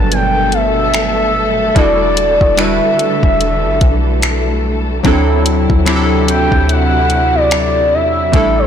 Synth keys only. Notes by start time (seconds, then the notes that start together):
Already playing: F#3 G3 B3 D4 F#4 A4 A#4 B4
1.75 G3 D4 E4 F#4 A4
2.57 G3 D4 E4 F#4 B4
5.03 F#3 C4 D4 E4 A4
5.85 F#3 C4 D4 E4 G4
5.96 A4
8.32 G3 A3 D4 E4 A4